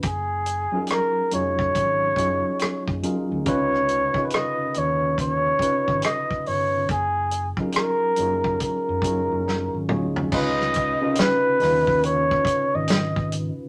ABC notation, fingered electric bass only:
X:1
M:4/4
L:1/16
Q:"Swing 16ths" 1/4=70
K:F#
V:1 name="Fingered electric bass" clef=bass
F,,,3 z3 E,,,2 G,,,2 F,,, z2 F,,, z =D,, | C,,3 z3 D,,4 z G,,, z2 =G,,,2 | F,,,3 z3 F,,,2 z F,, F,,, F,,,2 G,,, =D,,2 | C,,3 z3 D,,4 z G,,,4 z |]